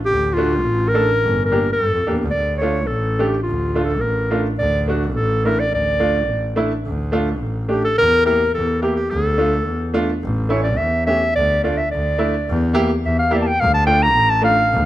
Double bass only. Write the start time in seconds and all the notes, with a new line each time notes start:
0.10 D2
0.66 A1
1.23 G1
1.79 G2
1.93 F2
2.06 E2
2.22 D2
2.35 D2
2.92 A1
3.47 D2
4.03 A1
4.59 D2
5.16 A1
5.71 D2
6.29 A1
6.85 D2
7.41 A1
7.98 E2
8.54 E2
9.11 D2
9.67 E2
10.23 A1
10.80 E2
11.36 D2
11.93 D2
12.49 E2
13.04 E2
13.61 D2
14.16 A1
14.72 D2